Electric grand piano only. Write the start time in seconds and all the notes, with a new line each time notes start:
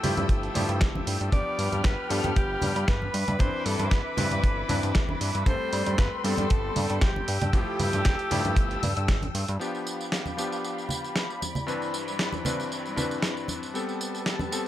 0.03 F3 A3 E4 G4
0.54 F3 A3 E4 G4
1.32 F3 B3 D4 G4
2.09 F3 B3 D4 G4
3.39 E3 C4 D4 B4
4.17 E3 C4 D4 B4
4.68 E3 C4 D4 B4
5.46 G3 A3 C4 A4
6.24 G3 B3 C4 A4
7.53 F3 A3 E4 G4
8.31 F3 A3 E4 G4
9.59 F3 B3 D4 G4
10.37 F3 B3 D4 G4
11.67 G2 E3 C4 D4 B4
12.45 G2 E3 C4 D4 B4
12.96 G2 E3 C4 D4 B4
13.74 G3 B3 C4 A4
14.51 G3 B3 C4 A4